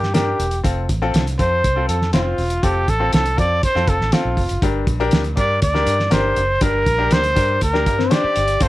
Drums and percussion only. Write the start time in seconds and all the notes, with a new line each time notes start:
0.03 snare
0.14 snare, closed hi-hat
0.40 closed hi-hat
0.51 closed hi-hat
0.64 kick, closed hi-hat
0.89 kick, closed hi-hat
1.14 snare, closed hi-hat
1.27 closed hi-hat
1.39 kick, closed hi-hat
1.64 kick, closed hi-hat
1.89 closed hi-hat
2.02 snare
2.13 snare, closed hi-hat
2.38 open hi-hat
2.50 closed hi-hat
2.63 kick, closed hi-hat
2.88 kick, closed hi-hat
3.13 snare, closed hi-hat
3.26 closed hi-hat
3.38 kick, closed hi-hat
3.63 kick, closed hi-hat
3.76 snare
3.87 kick, closed hi-hat
4.01 snare
4.12 snare, closed hi-hat
4.37 kick, open hi-hat
4.49 closed hi-hat
4.62 kick, closed hi-hat
4.87 kick, closed hi-hat
5.11 snare, closed hi-hat
5.24 closed hi-hat
5.37 kick, closed hi-hat
5.62 kick, closed hi-hat
5.75 snare
5.87 closed hi-hat
6.00 snare
6.11 snare, closed hi-hat
6.36 closed hi-hat
6.61 kick, closed hi-hat
6.86 kick, closed hi-hat
7.11 snare, closed hi-hat
7.24 closed hi-hat
7.36 kick, closed hi-hat
7.61 kick, closed hi-hat
7.75 snare
7.86 kick, closed hi-hat
8.00 snare
8.11 snare, closed hi-hat
8.36 closed hi-hat
8.48 closed hi-hat
8.60 kick, closed hi-hat